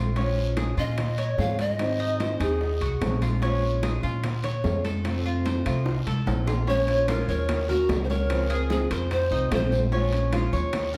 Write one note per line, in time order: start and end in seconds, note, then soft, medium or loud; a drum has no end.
0.00 0.71 A#1 loud
0.00 0.15 D#3 soft
0.00 0.15 A3 medium
0.00 0.16 C4 medium
0.00 0.16 F4 medium
0.16 0.77 F3 medium
0.16 0.79 G#3 medium
0.16 0.56 C#4 medium
0.16 0.77 C#4 medium
0.16 0.76 F4 medium
0.16 high bongo medium
0.16 high conga soft
0.16 high timbale medium
0.16 long guiro medium
0.37 high bongo soft
0.37 high conga soft
0.57 0.77 G#4 medium
0.57 high bongo medium
0.57 high conga medium
0.57 high timbale medium
0.57 low timbale medium
0.57 short guiro medium
0.77 1.34 A#2 medium
0.77 0.97 G#3 medium
0.77 0.97 C#4 medium
0.77 0.97 F4 medium
0.77 1.17 F4 medium
0.77 1.35 D#5 loud
0.77 high bongo soft
0.77 high conga soft
0.77 short guiro medium
0.98 muted steel-string acoustic guitar stroke medium
0.98 high bongo medium
0.98 high conga soft
0.98 low conga medium
0.98 high timbale medium
0.98 long guiro medium
1.18 1.58 C#5 medium
1.18 high conga soft
1.18 high timbale medium
1.38 2.34 G#2 medium
1.38 1.78 F3 soft
1.38 1.79 G#3 soft
1.38 1.79 C#4 medium
1.38 1.79 F4 medium
1.38 1.62 F5 loud
1.38 high bongo soft
1.38 low bongo medium
1.38 high conga medium
1.38 low timbale medium
1.38 short guiro medium
1.59 2.41 D#5 loud
1.59 high bongo soft
1.59 high conga medium
1.59 high timbale medium
1.59 short guiro medium
1.79 2.39 D#3 medium
1.79 2.40 F#3 medium
1.79 2.40 C4 medium
1.79 2.39 D#4 medium
1.79 2.40 G#4 medium
1.79 high bongo medium
1.79 high conga soft
1.79 high timbale medium
1.79 long guiro medium
2.00 2.19 D#4 medium
2.00 high bongo soft
2.00 high conga soft
2.20 2.40 C5 medium
2.20 high bongo medium
2.20 high conga medium
2.20 high timbale medium
2.20 low timbale medium
2.20 short guiro medium
2.40 2.78 D#2 loud
2.40 2.60 F#3 medium
2.40 2.61 C4 medium
2.40 2.80 D#4 medium
2.40 2.60 D#4 medium
2.40 2.60 G#4 medium
2.40 3.19 G#4 medium
2.40 high bongo soft
2.40 high conga soft
2.40 high timbale medium
2.40 short guiro medium
2.61 muted steel-string acoustic guitar stroke medium
2.61 high bongo medium
2.61 high conga soft
2.61 long guiro medium
2.81 3.00 C2 medium
2.81 3.21 F#4 medium
2.81 high conga soft
2.81 high timbale medium
3.01 3.97 A#1 medium
3.01 3.41 F#3 medium
3.01 3.42 C4 medium
3.01 3.42 D#4 medium
3.01 3.42 G#4 medium
3.01 high bongo soft
3.01 low bongo medium
3.01 high conga medium
3.01 high timbale medium
3.01 low timbale medium
3.01 short guiro medium
3.22 3.42 F4 medium
3.22 high bongo soft
3.22 high conga medium
3.22 high timbale medium
3.22 short guiro medium
3.42 4.23 F3 medium
3.42 4.03 G#3 medium
3.42 3.82 C#4 medium
3.42 4.03 C#4 medium
3.42 4.02 F4 medium
3.42 high bongo medium
3.42 high conga soft
3.42 high timbale medium
3.42 long guiro medium
3.62 high bongo soft
3.62 high conga soft
3.83 4.03 G#4 medium
3.83 high bongo medium
3.83 high conga medium
3.83 high timbale medium
3.83 low timbale medium
3.83 short guiro medium
4.03 4.60 A#2 medium
4.03 4.23 G#3 medium
4.03 4.23 C#4 medium
4.03 4.23 F4 medium
4.03 4.43 F4 medium
4.03 high bongo soft
4.03 high conga soft
4.03 short guiro medium
4.23 muted steel-string acoustic guitar stroke medium
4.23 high bongo medium
4.23 high conga soft
4.23 low conga medium
4.23 high timbale medium
4.23 long guiro medium
4.44 4.84 C#5 medium
4.44 high conga soft
4.44 low conga medium
4.44 high timbale medium
4.64 5.60 F2 loud
4.64 5.03 F3 medium
4.64 5.04 G#3 medium
4.64 5.05 C#4 medium
4.64 5.05 F4 medium
4.64 high bongo soft
4.64 low bongo medium
4.64 high conga medium
4.64 low timbale medium
4.64 short guiro medium
4.84 5.24 A4 medium
4.84 high bongo soft
4.84 high conga medium
4.84 high timbale medium
4.84 short guiro medium
5.04 5.65 C3 medium
5.04 5.65 F3 medium
5.04 5.65 A3 medium
5.04 5.65 C4 medium
5.04 5.64 F4 medium
5.04 high bongo medium
5.04 high conga soft
5.04 high timbale medium
5.04 long guiro medium
5.25 5.45 F4 medium
5.25 high bongo soft
5.25 high conga soft
5.45 5.65 C5 medium
5.45 high bongo medium
5.45 high conga medium
5.45 high timbale medium
5.45 low timbale medium
5.45 short guiro medium
5.65 6.04 C2 medium
5.65 5.85 F3 medium
5.65 5.85 A3 medium
5.65 5.86 C4 medium
5.65 5.85 F4 medium
5.65 6.05 F4 medium
5.65 high bongo soft
5.65 high conga soft
5.65 high timbale medium
5.65 short guiro medium
5.86 muted steel-string acoustic guitar stroke medium
5.86 high bongo loud
5.86 high conga soft
5.86 long guiro medium
6.06 6.25 C2 medium
6.06 6.46 A4 medium
6.06 high conga medium
6.06 high timbale medium
6.26 7.22 A#1 medium
6.26 6.67 F3 soft
6.26 6.67 A3 medium
6.26 6.67 C4 medium
6.26 6.68 F4 medium
6.26 high conga medium
6.26 high timbale medium
6.26 short guiro medium
6.47 6.67 F4 medium
6.47 low bongo medium
6.47 low conga medium
6.47 low timbale medium
6.47 short guiro medium
6.67 6.87 F3 medium
6.67 6.87 G#3 medium
6.67 7.07 C#4 medium
6.67 6.88 C#4 medium
6.67 6.87 F4 medium
6.67 7.10 C#5 loud
6.67 high bongo medium
6.67 high conga soft
6.67 long guiro medium
6.88 7.08 G#3 soft
6.88 7.08 C#4 soft
6.88 7.08 F4 medium
6.88 high bongo soft
6.88 high conga soft
6.88 high timbale medium
7.08 7.48 F3 medium
7.08 7.49 G#3 medium
7.08 7.48 C#4 medium
7.08 7.28 F4 medium
7.08 7.49 F4 medium
7.08 7.28 A#4 medium
7.08 high bongo medium
7.08 high conga medium
7.08 high timbale medium
7.08 low timbale medium
7.08 short guiro medium
7.28 7.85 D#2 medium
7.28 7.67 A#4 medium
7.28 7.68 C#5 medium
7.28 high bongo soft
7.28 high conga soft
7.28 short guiro medium
7.49 muted steel-string acoustic guitar stroke medium
7.49 high bongo medium
7.49 high conga soft
7.49 low conga medium
7.49 high timbale loud
7.49 long guiro medium
7.69 7.89 A#3 soft
7.69 7.89 C#4 soft
7.69 8.00 F#4 medium
7.69 7.89 F#4 soft
7.69 8.08 A#4 medium
7.69 high bongo soft
7.69 high conga soft
7.69 low conga medium
7.89 8.84 C#2 medium
7.89 8.09 D#3 medium
7.89 8.09 A#3 medium
7.89 8.10 C#4 medium
7.89 8.08 F#4 medium
7.89 high bongo medium
7.89 low bongo medium
7.89 high conga medium
7.89 high timbale medium
7.89 low timbale medium
7.89 short guiro medium
8.04 8.11 C5 medium
8.09 8.30 A#3 soft
8.09 8.30 C#4 soft
8.09 8.29 F#4 soft
8.09 8.70 A#4 medium
8.09 8.49 C#5 medium
8.09 high conga medium
8.09 short guiro medium
8.30 8.49 C#3 medium
8.30 8.49 F3 medium
8.30 8.50 G#3 medium
8.30 8.49 C4 medium
8.30 8.48 F4 medium
8.30 high bongo medium
8.30 high conga soft
8.30 high timbale loud
8.30 long guiro medium
8.49 8.70 G#3 soft
8.49 8.70 C4 soft
8.49 8.69 F4 medium
8.49 8.90 G#4 medium
8.49 high bongo soft
8.49 high conga soft
8.49 high timbale medium
8.70 9.10 C#3 medium
8.70 9.10 F3 medium
8.70 9.10 G#3 medium
8.70 9.10 C4 medium
8.70 9.10 F4 medium
8.70 8.90 G#4 medium
8.70 high bongo medium
8.70 high conga medium
8.70 low timbale medium
8.70 short guiro medium
8.90 9.28 F2 medium
8.90 8.97 A#4 medium
8.90 9.30 C5 medium
8.90 high timbale medium
8.90 short guiro medium
9.11 9.49 C5 loud
9.11 muted steel-string acoustic guitar stroke medium
9.11 high bongo medium
9.11 high conga soft
9.11 high timbale medium
9.11 long guiro medium
9.30 9.50 C2 medium
9.30 9.51 A3 soft
9.30 9.51 C4 soft
9.30 9.51 D#4 medium
9.30 9.50 F4 soft
9.30 high bongo soft
9.30 high conga soft
9.51 10.47 A#1 loud
9.51 9.71 C3 medium
9.51 9.71 D#3 medium
9.51 9.71 A3 medium
9.51 9.72 C4 medium
9.51 9.71 F4 medium
9.51 9.91 C5 medium
9.51 9.80 C5 medium
9.51 high bongo medium
9.51 low bongo medium
9.51 high conga medium
9.51 high timbale loud
9.51 low timbale medium
9.51 short guiro medium
9.72 9.92 A3 soft
9.72 9.92 C4 medium
9.72 9.91 F4 medium
9.72 high bongo soft
9.72 high conga medium
9.72 short guiro medium
9.92 10.11 F3 medium
9.92 10.12 G#3 medium
9.92 10.32 C#4 medium
9.92 10.12 C#4 medium
9.92 10.11 F4 medium
9.92 high bongo medium
9.92 high conga soft
9.92 long guiro medium
10.12 10.32 G#3 soft
10.12 10.32 C#4 soft
10.12 10.32 F4 medium
10.12 high bongo soft
10.12 high conga soft
10.12 high timbale medium
10.32 10.72 F3 medium
10.32 10.73 G#3 medium
10.32 10.72 C#4 medium
10.32 10.52 F4 medium
10.32 10.73 F4 medium
10.32 high bongo medium
10.32 high conga loud
10.32 high timbale medium
10.32 low timbale medium
10.32 short guiro medium
10.53 10.97 D#2 loud
10.53 10.92 C#5 medium
10.53 high bongo soft
10.53 high conga soft
10.53 short guiro medium
10.73 muted steel-string acoustic guitar stroke medium
10.73 high bongo medium
10.73 high conga soft
10.73 low conga medium
10.73 high timbale loud
10.73 long guiro medium
10.93 10.97 F#4 soft
10.93 10.97 A#4 medium
10.93 high bongo soft
10.93 high conga soft